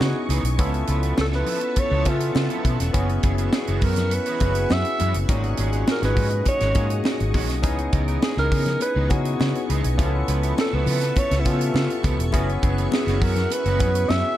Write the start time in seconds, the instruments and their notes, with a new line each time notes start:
Already playing: tine electric piano B3 C#4 D#4 E4 G#4, string machine B3 C#5 D#5 C#6, alto saxophone F#4
0.00 fingered electric bass C#3, muted clean electric guitar stroke, snare, high conga
0.15 muted clean electric guitar stroke
0.29 fingered electric bass C#2, clean electric guitar E3 B3 D#4 G#4, closed hi-hat, high conga
0.43 fingered electric bass B1, muted clean electric guitar stroke, closed hi-hat
0.57 fingered electric bass C#2, clean electric guitar F3 B3 E4 A4, tine electric piano B3 C#4 E4 F4 A4, string machine E5 A5, kick, closed hi-hat, muted conga
0.74 muted clean electric guitar stroke, closed hi-hat
0.87 fingered electric bass C#2, clean electric guitar F3 B3 E4 B4, closed hi-hat
1.03 clean electric guitar F3 B3 E4 B4, closed hi-hat
1.17 fingered electric bass C#2, alto saxophone A4, muted clean electric guitar stroke, snare, high conga
1.32 clean electric guitar F3 B3 E4 A4, alto saxophone B4, snare
1.46 clean electric guitar F3 B3 E4 A4, open hi-hat, low conga
1.61 muted clean electric guitar stroke, closed hi-hat
1.76 alto saxophone C#5, muted clean electric guitar stroke, kick, closed hi-hat, muted conga
1.90 fingered electric bass C#2, clean electric guitar F3 B3 E4 A4
2.05 fingered electric bass C#3, clean electric guitar F3 B3 E4 A4, tine electric piano B3 C#4 F4 A4 E5, alto saxophone F4, kick, closed hi-hat, muted conga
2.20 muted clean electric guitar stroke, closed hi-hat
2.35 fingered electric bass C#3, muted clean electric guitar stroke, snare, high conga
2.50 clean electric guitar F3 B3 E4 A4, closed hi-hat
2.64 fingered electric bass B2, clean electric guitar F3 B3 E4 A4, kick, closed hi-hat, high conga
2.80 fingered electric bass E1, muted clean electric guitar stroke, snare, closed hi-hat
2.93 fingered electric bass F#1, clean electric guitar E3 B3 C#4 F#4, tine electric piano B3 C#4 E4 F#4 G#4, string machine E5 F#5 C#6, kick, closed hi-hat, muted conga
3.09 muted clean electric guitar stroke, closed hi-hat
3.23 fingered electric bass F#1, clean electric guitar E3 B3 C#4 G#4, kick, closed hi-hat
3.38 clean electric guitar E3 B3 C#4 G#4, closed hi-hat
3.53 alto saxophone G#4, muted clean electric guitar stroke, snare, high conga
3.67 fingered electric bass F#1, clean electric guitar E3 B3 C#4 F#4, closed hi-hat
3.81 fingered electric bass F#2, clean electric guitar E3 B3 C#4 F#4, alto saxophone A#4, kick, open hi-hat
3.96 muted clean electric guitar stroke, snare, closed hi-hat, low conga
4.11 alto saxophone B4, muted clean electric guitar stroke, closed hi-hat, muted conga
4.26 clean electric guitar E3 B3 C#4 F#4, closed hi-hat
4.40 fingered electric bass F#1, clean electric guitar E3 B3 C#4 F#4, tine electric piano B3 C#4 E4 F#4 G#4, kick, closed hi-hat, muted conga, low conga
4.55 muted clean electric guitar stroke, closed hi-hat
4.70 fingered electric bass F#2, alto saxophone E5, muted clean electric guitar stroke, snare, high conga
4.85 muted clean electric guitar stroke, closed hi-hat
4.99 fingered electric bass F#2, clean electric guitar E3 B3 C#4 F#4, closed hi-hat, high conga
5.14 fingered electric bass F#1, muted clean electric guitar stroke, closed hi-hat
5.29 tine electric piano A#2 C#4 D#4 F#4 G#4, clean electric guitar D#3 G#3 C#4 F#4, string machine G#4 D#5 C#6, kick, closed hi-hat, muted conga
5.44 muted clean electric guitar stroke, closed hi-hat
5.57 fingered electric bass G#1, clean electric guitar D#3 G#3 C#4 G#4, closed hi-hat, muted conga
5.73 clean electric guitar D#3 G#3 C#4 G#4, closed hi-hat
5.87 alto saxophone A#4, muted clean electric guitar stroke, snare, high conga
6.02 fingered electric bass G#1, clean electric guitar D#3 G#3 C#4 F#4, alto saxophone B4, snare, closed hi-hat
6.16 fingered electric bass G#2, clean electric guitar D#3 G#3 C#4 F#4, kick, open hi-hat, low conga
6.31 muted clean electric guitar stroke, closed hi-hat
6.46 alto saxophone C#5, muted clean electric guitar stroke, kick, closed hi-hat, muted conga
6.60 fingered electric bass G#1, clean electric guitar D#3 G#3 C#4 F#4, snare, closed hi-hat
6.75 fingered electric bass G#2, clean electric guitar D#3 G#3 C#4 F#4, tine electric piano A#3 C#4 D#4 F#4 G#4, kick, closed hi-hat, muted conga
6.90 muted clean electric guitar stroke, closed hi-hat
7.04 muted clean electric guitar stroke, snare, high conga
7.20 fingered electric bass G#1, muted clean electric guitar stroke, closed hi-hat
7.34 fingered electric bass A#1, clean electric guitar D#3 G#3 C#4 F#4, kick, open hi-hat, high conga
7.49 fingered electric bass B1, muted clean electric guitar stroke, snare, closed hi-hat
7.62 fingered electric bass C#2, clean electric guitar E3 B3 D#4 G#4, tine electric piano B3 C#4 D#4 E4 G#4, string machine B3 C#5, kick, closed hi-hat, muted conga
7.78 muted clean electric guitar stroke, closed hi-hat
7.93 fingered electric bass C#2, clean electric guitar E3 B3 D#4 A#4, kick, closed hi-hat
8.08 clean electric guitar E3 B3 D#4 A#4, closed hi-hat
8.22 alto saxophone G#4, muted clean electric guitar stroke, snare, high conga
8.37 fingered electric bass C#2, clean electric guitar E3 B3 D#4 G#4, alto saxophone A#4, snare
8.52 fingered electric bass C#3, clean electric guitar E3 B3 D#4 G#4, kick, open hi-hat
8.66 muted clean electric guitar stroke, snare, closed hi-hat, low conga
8.81 alto saxophone B4, muted clean electric guitar stroke, closed hi-hat, muted conga
8.96 fingered electric bass C#2, clean electric guitar E3 B3 D#4 G#4
9.09 fingered electric bass C#3, tine electric piano B3 C#4 D#4 E4 G#4, alto saxophone F#4, muted clean electric guitar stroke, kick, closed hi-hat, muted conga, low conga
9.25 muted clean electric guitar stroke, closed hi-hat
9.40 fingered electric bass C#3, muted clean electric guitar stroke, snare, high conga
9.55 muted clean electric guitar stroke, closed hi-hat
9.69 fingered electric bass C#2, clean electric guitar E3 B3 D#4 G#4, closed hi-hat, high conga
9.84 fingered electric bass B1, muted clean electric guitar stroke, closed hi-hat
9.97 fingered electric bass C#2, clean electric guitar F3 B3 E4 A4, tine electric piano B3 C#4 E4 F4 G4, string machine E5 A5, kick, closed hi-hat, muted conga
10.05 tine electric piano A4
10.14 muted clean electric guitar stroke
10.28 fingered electric bass C#2, clean electric guitar F3 B3 E4 B4, closed hi-hat
10.43 clean electric guitar F3 B3 E4 B4, closed hi-hat
10.58 alto saxophone A4, muted clean electric guitar stroke, snare, high conga
10.72 fingered electric bass C#2, clean electric guitar F3 B3 E4 A4, alto saxophone B4
10.86 fingered electric bass C#3, clean electric guitar F3 B3 E4 A4, open hi-hat, low conga
11.01 muted clean electric guitar stroke, snare, closed hi-hat
11.16 alto saxophone C#5, kick, closed hi-hat, muted conga
11.31 fingered electric bass C#2, muted clean electric guitar stroke, snare, closed hi-hat
11.40 alto saxophone E4
11.45 fingered electric bass C#3, clean electric guitar F3 B3 E4 A4, tine electric piano B3 C#4 F4 G4 E5, alto saxophone F4, kick, closed hi-hat, muted conga
11.53 tine electric piano A4
11.60 muted clean electric guitar stroke, closed hi-hat
11.74 fingered electric bass C#3, muted clean electric guitar stroke, snare, high conga
11.89 muted clean electric guitar stroke, closed hi-hat
12.03 fingered electric bass C#2, clean electric guitar F3 B3 E4 A4, kick, closed hi-hat, high conga
12.18 fingered electric bass E1, muted clean electric guitar stroke, closed hi-hat
12.32 fingered electric bass F#1, clean electric guitar E3 B3 C#4 F#4, tine electric piano B3 C#4 E4 F#4 G#4, string machine E5 F#5, kick, closed hi-hat, muted conga
12.48 muted clean electric guitar stroke, closed hi-hat
12.62 fingered electric bass F#1, clean electric guitar E3 B3 C#4 G#4, kick, closed hi-hat
12.77 clean electric guitar E3 B3 C#4 G#4, closed hi-hat
12.92 alto saxophone G#4, muted clean electric guitar stroke, snare, high conga
13.06 fingered electric bass F#1, clean electric guitar E3 B3 C#4 F#4, snare, closed hi-hat
13.21 fingered electric bass F#2, clean electric guitar E3 B3 C#4 F#4, alto saxophone A#4, kick, open hi-hat
13.36 muted clean electric guitar stroke, snare, closed hi-hat, low conga
13.50 alto saxophone B4, muted clean electric guitar stroke, closed hi-hat, muted conga
13.66 fingered electric bass F#1, clean electric guitar E3 B3 C#4 F#4, closed hi-hat
13.79 fingered electric bass F#2, clean electric guitar E3 B3 C#4 F#4, tine electric piano B3 C#4 E4 F#4 G#4, kick, closed hi-hat, muted conga, low conga
13.95 muted clean electric guitar stroke, closed hi-hat
14.09 fingered electric bass F#2, alto saxophone E5, muted clean electric guitar stroke, snare, high conga
14.24 muted clean electric guitar stroke